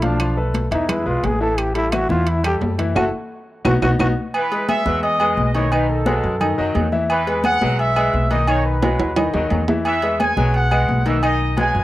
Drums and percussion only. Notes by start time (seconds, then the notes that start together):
0.02 high conga, high timbale
0.20 high timbale, claves
0.37 high conga
0.54 high conga, high timbale
0.72 high timbale
0.89 high conga, low conga, high timbale, claves
1.07 high conga
1.24 high conga, high timbale, low timbale
1.58 high conga, high timbale, claves
1.75 high conga, high timbale
1.92 high conga, high timbale, claves
2.10 high conga
2.27 high timbale
2.44 high conga, high timbale, claves
2.62 high conga, low timbale
2.79 high conga, high timbale
2.96 high conga, high timbale, claves
3.65 high conga, high timbale, claves
3.82 high conga, high timbale, claves
3.99 high conga, high timbale, claves
4.34 high conga, low agogo, claves
4.52 high conga, low agogo
4.69 high conga, low agogo, claves
4.86 high conga
5.03 high conga, low agogo
5.20 high conga, low agogo, claves
5.37 high conga
5.55 high conga, low agogo
5.72 high conga, low agogo, claves
5.89 high conga
6.06 high conga, low agogo
6.24 high conga
6.40 high conga, low conga, low agogo, claves
6.58 high conga
6.75 high conga, low timbale, low agogo
6.92 high conga
7.10 high conga, low agogo, claves
7.27 high conga, low agogo
7.44 high conga, low agogo, claves
7.61 high conga
7.79 high conga, low agogo
7.96 high conga, low agogo, claves
8.13 high conga
8.31 high conga, low agogo
8.47 high conga, low agogo, claves
8.65 high conga
8.83 high conga, high timbale, low agogo
9.00 high timbale
9.16 high conga, low conga, high timbale, low agogo, claves
9.34 high conga, low conga, low timbale
9.50 high conga, low timbale, low agogo
9.68 high conga, low timbale
9.85 high conga, low agogo, claves
10.02 high conga, low agogo
10.20 high conga, low agogo, claves
10.37 high conga
10.54 high conga, low agogo
10.71 high conga, low agogo, claves
10.89 high conga
11.06 high conga, low agogo
11.23 high conga, low agogo, claves
11.41 high conga
11.57 high conga, low agogo
11.75 high conga